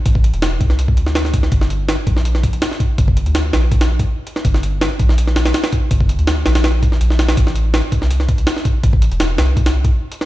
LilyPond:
<<
  \new Staff \with { instrumentName = "Sub bass" } { \clef bass \time 4/4 \key g \dorian \tempo 4 = 164 a,,8. e,,8. c,4 d,4. | g,,4~ g,,16 r16 bes,,4. r4 | g,,8. d,8. bes,,4. r4 | g,,4~ g,,16 r16 bes,,4. r4 |
g,,8. d,8. bes,,4. bes,,4 | a,,4~ a,,16 r16 c,4. r4 | a,,8. e,,8. c,4. r4 | }
  \new DrumStaff \with { instrumentName = "Drums" } \drummode { \time 4/4 <hh bd>16 bd16 hh16 hh16 <hh sn>8 <hh bd>16 sn16 hh16 bd16 hh16 sn16 <hh sn>16 sn16 <hh bd>16 sn16 | <hh bd>16 sn16 hh8 <hh sn>8 <hh bd>16 sn16 hh16 sn16 <hh bd>16 hh16 <hh sn>16 sn16 <hh bd>8 | <hh bd>16 bd16 hh16 hh16 <hh sn>8 <hh sn>8 <hh bd>16 <hh sn>8 <hh bd>16 r8 hh16 sn16 | <hh bd>16 sn16 hh8 <hh sn>8 <hh bd>16 sn16 hh16 sn16 <hh sn>16 <hh sn>16 <hh sn>16 <hh sn>16 <hh bd>8 |
<hh bd>16 bd16 hh16 hh16 <hh sn>8 <hh sn>16 <hh sn>16 <hh sn>8 <hh bd>16 sn16 hh16 sn16 <hh sn>16 <hh sn>16 | <hh bd>16 sn16 hh8 <hh sn>8 <hh bd>16 sn16 hh16 sn16 <hh bd>16 hh16 <hh sn>16 sn16 <hh bd>8 | <hh bd>16 bd16 hh16 hh16 <hh sn>8 <hh sn>8 <hh bd>16 <hh sn>8 <hh bd>16 r8 hh16 sn16 | }
>>